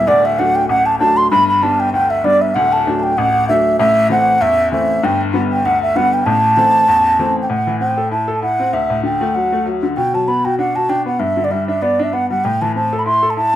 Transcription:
0.07 D1 D2 D5
0.25 E5
0.38 F#3 A3 D4 F#5
0.55 G5
0.69 A1 F#5
0.86 A5
0.99 F#3 A3 D4 A5
1.17 C6
1.31 G1 G2 B5
1.48 B5
1.62 G3 B3 D4 A5
1.80 G5
1.93 D2 G5
2.10 E5
2.24 G3 B3 D4 D5
2.41 E5
2.55 D1 D2 F#5
2.73 A5
2.86 F#3 A3 D4
2.99 A5
3.03 G5
3.18 A1 F#5
3.48 F#3 A3 D4 E5
3.79 A1 A2 E5
4.09 E3 A3 C4 F#5
4.41 E2 E5
4.72 E3 A3 C4 E5
5.03 G1 G2 G5
5.34 D3 G3 B3
5.52 G5
5.65 D2 F#5
5.82 E5
5.96 D3 G3 B3 F#5
6.13 G5
6.26 A1 A2 A5
6.57 E3 A3 C4
6.88 E2
7.19 E3 A3 C4
7.42 G5
7.49 A2 F#5
7.67 E3
7.80 C4 G5
7.98 A4
8.11 E4 A5
8.28 A4
8.42 E4 F#5
8.60 C4
8.73 D2 E5
8.90 A2
9.03 D3 G5
9.21 A3
9.35 F#3 F#5
9.52 A3
9.66 F#3
9.83 D3
9.97 B2 G5
10.14 F#3 A5
10.28 B3 B5
10.45 F#4 G5
10.59 D4 F#5
10.75 F#4 A5
10.89 D4 G5
11.06 B3 F#5
11.19 G2 E5
11.37 D3
11.44 D5
11.51 G3 E5
11.68 D4 E5
11.82 B3 D5
11.99 D4 E5
12.13 B3 F#5
12.30 G3 F#5
12.44 A2 G5
12.62 E3 A5
12.75 C4 A5
12.93 A4
12.99 B5
13.06 E4 C6
13.23 A4
13.30 A5
13.37 E4 A5

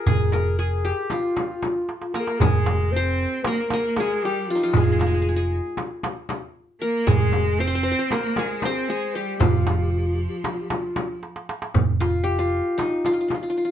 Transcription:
Already playing: F4 A#4
0.06 F1 G#4, frame drum, darbuka dum
0.32 A#4, darbuka tek, frame drum
0.59 G#4
0.85 G4
1.10 F4, darbuka tek, frame drum
1.37 darbuka tek, frame drum
1.63 darbuka tek, frame drum
1.89 darbuka tek
2.02 darbuka ka
2.14 A#3 A#4, darbuka tek
2.20 G#4
2.26 A#4, darbuka ka
2.39 F1 G#3 G#4, darbuka dum, frame drum
2.66 darbuka tek, frame drum
2.92 C4 C5, darbuka ka
2.96 C5
3.44 A#3 A#4, darbuka tek, frame drum
3.70 A#3 A#4, darbuka tek, frame drum
3.96 G#3 G#4, darbuka tek, frame drum
4.22 G3 G4
4.46 F3 F4
4.50 F4
4.55 D#4
4.60 F3 F4
4.73 F1 G#3 G#4, frame drum, darbuka dum
4.84 G#4
4.92 G#4
4.99 G#4, darbuka tek, frame drum
5.07 G#4
5.14 G#4
5.22 G#4
5.29 G#4
5.36 G#4
5.77 darbuka tek, frame drum
6.03 darbuka tek, frame drum
6.29 darbuka tek, frame drum
6.81 A#3 A#4
7.07 F1 G#3 G#4, frame drum, darbuka dum
7.16 G4
7.22 G#4
7.32 darbuka tek, frame drum
7.59 C4 C5, darbuka ka
7.67 C5
7.75 C5
7.83 C5
7.92 C5
7.99 C5
8.06 C5
8.11 A#3 A#4, darbuka tek, frame drum
8.36 G#3 G#4, darbuka tek, frame drum
8.62 C4 C5, darbuka tek, frame drum
8.89 G#3 G#4
9.15 G3 G4
9.40 F1 F3 F4, frame drum, darbuka dum
9.50 G4
9.58 F4
9.65 G4, darbuka tek, frame drum
9.74 F4
9.82 G4
9.91 F4, darbuka ka
9.98 G4
10.07 F4
10.15 G4
10.19 F4, darbuka ka
10.30 G4
10.38 F4
10.44 G4, darbuka tek, frame drum
10.54 F4
10.62 G4
10.70 F4, darbuka tek, frame drum
10.96 darbuka tek, frame drum
11.23 darbuka tek
11.36 darbuka ka
11.49 darbuka tek
11.62 darbuka ka
11.74 F1, frame drum, darbuka dum
12.00 F4, darbuka tek, frame drum
12.24 G4
12.39 F4
12.53 darbuka ka
12.78 D#4, darbuka tek, frame drum
13.05 F4, darbuka tek, frame drum
13.13 F4
13.21 F4
13.28 F4, darbuka tek, frame drum
13.34 F4
13.43 F4
13.50 F4
13.57 F4
13.65 F4

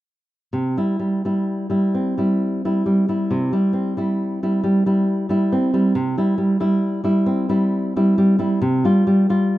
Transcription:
0.53 C3
0.77 G3 E4
0.99 G3
1.25 G3 E4
1.70 G3 E4
1.94 C4
2.18 G3 E4
2.65 G3 E4
2.86 G3
3.08 G3 E4
3.31 C3
3.53 G3 E4
3.73 C4
3.97 G3 E4
4.43 G3 E4
4.64 G3
4.86 G3 E4
5.29 G3 E4
5.52 C4
5.74 G3 E4
5.95 C3
6.18 G3 E4
6.38 G3
6.60 G3 E4
7.04 G3 E4
7.26 C4
7.49 G3 E4
7.96 G3 E4
8.18 G3
8.39 G3 E4
8.62 C3
8.84 G3 F4
9.07 G3
9.29 G3 F4

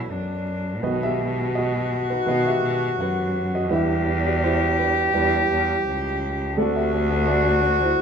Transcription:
Already playing: B1 B2 F#3 B3 D4 E4 F#4 A4 B4 C5 D5
0.10 F#2 D4
0.82 B1 B2 D#3 B3 F#4 B4 D#5
0.86 F#4
1.03 G4 E5
1.55 F#4 D#5
2.10 D#4 B4
2.26 B2 D#3 B3 B4 D#5
2.31 F#4
2.47 G4 E5
2.62 B2
2.98 F#2 F#5
3.02 B4
3.55 F#4 D#5
3.70 E2 E3 G3 D4 E4 G4 B4 E5
3.75 G4
4.26 F#4 D5
4.44 E4 C5
4.79 D4 B4
5.13 E2 G3 D4 E4 B4
5.50 E2
5.86 C#2
6.57 D2 D3 A3 C4 D4 F#4 A4 D5
6.62 F#4
6.76 G4 E5
7.22 E5
7.28 F#4 D5
7.82 E4 C5

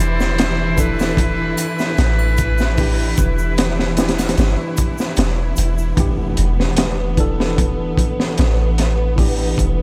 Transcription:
Already playing: E3 D4 E4 G4
0.00 E1 C5
0.20 snare, shaker
0.38 snare, closed hi-hat, shaker
0.76 E3 D4 A4 B4, kick, closed hi-hat, shaker
0.99 snare, triangle, shaker
1.17 kick, closed hi-hat, shaker
1.57 closed hi-hat, triangle, shaker
1.79 snare, shaker
1.97 A1, snare, closed hi-hat, shaker
2.19 triangle
2.37 kick, closed hi-hat, shaker
2.58 snare, shaker
2.77 E3 D4 G4, kick, open hi-hat, shaker
3.17 E1, kick, closed hi-hat, shaker
3.38 shaker
3.57 snare, closed hi-hat, shaker
3.79 snare
3.97 E3 D4 G4, snare, closed hi-hat, shaker
4.08 snare, closed hi-hat
4.19 snare, closed hi-hat, triangle, shaker
4.29 snare, closed hi-hat
4.37 G1, snare, closed hi-hat, shaker
4.77 kick, closed hi-hat, shaker
4.98 snare, shaker
5.16 E1, snare, closed hi-hat, shaker
5.56 E1, closed hi-hat, shaker
5.78 shaker
5.97 E3 B3 D4 G4, kick, closed hi-hat, impact
6.37 E1, closed hi-hat
6.60 snare
6.77 snare, closed hi-hat
7.17 E3 D4 A4, kick, closed hi-hat
7.40 snare
7.58 kick, closed hi-hat
7.97 kick, closed hi-hat
8.20 snare
8.38 A1, snare, closed hi-hat
8.78 snare, closed hi-hat
9.16 E3 D4 G4, kick, open hi-hat
9.58 E1, kick, closed hi-hat

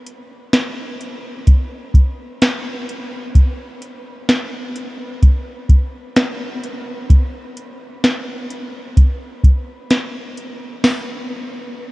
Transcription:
0.06 closed hi-hat
0.53 snare, closed hi-hat
1.01 closed hi-hat
1.47 kick, closed hi-hat
1.94 kick, closed hi-hat
2.42 snare, closed hi-hat
2.89 closed hi-hat
3.35 kick, closed hi-hat
3.82 closed hi-hat
4.29 snare, closed hi-hat
4.76 closed hi-hat
5.22 kick, closed hi-hat
5.69 kick, closed hi-hat
6.16 snare, closed hi-hat
6.64 closed hi-hat
7.10 kick, closed hi-hat
7.57 closed hi-hat
8.04 snare, closed hi-hat
8.51 closed hi-hat
8.97 kick, closed hi-hat
9.44 kick, closed hi-hat
9.91 snare, closed hi-hat
10.38 closed hi-hat
10.84 snare, open hi-hat

